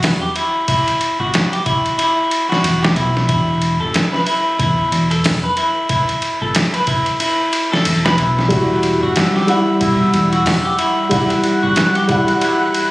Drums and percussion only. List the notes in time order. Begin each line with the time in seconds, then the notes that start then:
0.03 snare, open hi-hat
0.36 ride
0.68 kick, ride
0.88 ride
1.01 ride
1.34 snare, ride
1.53 ride
1.66 kick, ride
1.86 ride
1.99 ride
2.31 ride
2.52 snare
2.64 ride
2.85 snare
2.96 ride
3.17 snare
3.29 kick, ride
3.62 ride
3.94 snare, ride
4.14 snare
4.27 ride
4.59 kick, ride
4.92 ride
5.11 ride
5.24 snare, open hi-hat
5.57 ride
5.89 kick, ride
6.09 ride
6.22 ride
6.55 snare, ride
6.74 ride
6.87 kick, ride
7.06 ride
7.20 ride
7.53 ride
7.73 snare
7.85 ride
8.06 snare
8.18 ride
8.39 snare
8.50 kick, ride
8.83 ride
9.16 snare, ride
9.36 snare
9.48 ride
9.81 kick, ride
10.14 ride
10.33 ride
10.46 snare, open hi-hat
10.79 ride
11.11 kick, ride
11.30 ride
11.44 ride
11.76 snare, ride
11.95 ride
12.09 kick, ride
12.28 ride
12.41 ride
12.74 ride